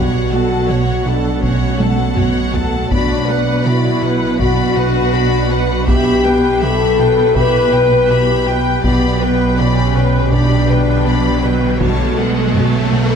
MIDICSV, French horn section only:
0, 0, Header, 1, 2, 480
1, 0, Start_track
1, 0, Key_signature, 2, "minor"
1, 0, Tempo, 740741
1, 1890, Time_signature, 4, 2, 24, 8
1, 8524, End_track
2, 0, Start_track
2, 0, Title_t, "French horn section"
2, 0, Program_c, 0, 60
2, 0, Note_on_c, 0, 66, 96
2, 675, Note_off_c, 0, 66, 0
2, 690, Note_on_c, 0, 62, 72
2, 927, Note_on_c, 0, 61, 65
2, 930, Note_off_c, 0, 62, 0
2, 1649, Note_off_c, 0, 61, 0
2, 1886, Note_on_c, 0, 62, 84
2, 2342, Note_off_c, 0, 62, 0
2, 2368, Note_on_c, 0, 64, 96
2, 2846, Note_on_c, 0, 66, 108
2, 2849, Note_off_c, 0, 64, 0
2, 3808, Note_off_c, 0, 66, 0
2, 3808, Note_on_c, 0, 67, 97
2, 4280, Note_off_c, 0, 67, 0
2, 4295, Note_on_c, 0, 69, 105
2, 4770, Note_on_c, 0, 71, 115
2, 4772, Note_off_c, 0, 69, 0
2, 5728, Note_on_c, 0, 59, 89
2, 5730, Note_off_c, 0, 71, 0
2, 6200, Note_off_c, 0, 59, 0
2, 6210, Note_on_c, 0, 61, 99
2, 6688, Note_on_c, 0, 62, 98
2, 6690, Note_off_c, 0, 61, 0
2, 7541, Note_off_c, 0, 62, 0
2, 7651, Note_on_c, 0, 57, 84
2, 8356, Note_off_c, 0, 57, 0
2, 8370, Note_on_c, 0, 59, 70
2, 8524, Note_off_c, 0, 59, 0
2, 8524, End_track
0, 0, End_of_file